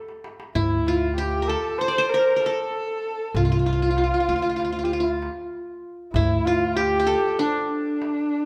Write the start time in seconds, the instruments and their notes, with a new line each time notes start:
Already playing: qanun A4
0.08 darbuka ka
0.24 darbuka tek
0.40 darbuka ka
0.55 upright bass D2, qanun E4, kamancheh E4, darbuka dum
0.87 qanun F4, darbuka tek
1.16 kamancheh G4, qanun G4, darbuka tek
1.33 darbuka ka
1.42 qanun A#4
1.48 kamancheh A4, qanun A4
1.78 kamancheh C5, qanun C5, darbuka tek
1.88 qanun D5
1.98 qanun C5
2.09 kamancheh A#4
2.14 qanun A#4
2.36 kamancheh A4, qanun A#4
2.41 darbuka tek
2.46 qanun A4
3.34 upright bass C2, kamancheh F4, qanun F4, darbuka dum
3.45 qanun F4
3.52 qanun F4
3.59 qanun F4
3.66 qanun F4, darbuka tek
3.73 qanun F4
3.82 qanun F4
3.91 qanun F4
3.97 qanun F4, darbuka tek
4.04 qanun F4
4.13 qanun F4, darbuka ka
4.20 qanun F4
4.28 upright bass D2, qanun F4
4.36 qanun F4
4.42 qanun F4
4.49 qanun F4
4.56 qanun F4, darbuka tek
4.65 qanun F4
4.72 qanun F4
4.79 qanun F4
4.84 qanun F4, kamancheh G4
4.93 kamancheh F4, qanun F4
5.00 kamancheh E4, qanun F4
5.10 kamancheh F4
5.22 darbuka tek
6.13 upright bass D2, kamancheh E4, qanun E4, darbuka dum
6.45 kamancheh F4, qanun F4, darbuka tek
6.75 kamancheh G4, qanun G4, darbuka tek
6.92 darbuka ka
7.00 qanun G4
7.07 qanun A4, darbuka ka
7.24 darbuka ka
7.39 qanun D4, kamancheh D4, darbuka tek
8.02 darbuka tek